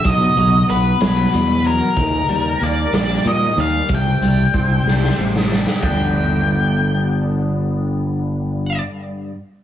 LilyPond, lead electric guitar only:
\new Staff \with { instrumentName = "Lead electric guitar" } { \time 6/8 \key g \major \tempo 4. = 62 dis''4 b'8 b'4 bes'8~ | bes'4 d''8 d''8 ees''8 f''8 | g''2~ g''8 r8 | g''2.~ |
g''2. | }